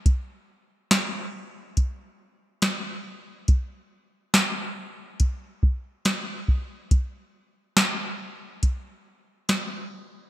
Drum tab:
HH |x-x-x-x-|x-x-x-x-|x-x-x-x-|
SD |--o---o-|--o---o-|--o---o-|
BD |o---o---|o---oo-o|o---o---|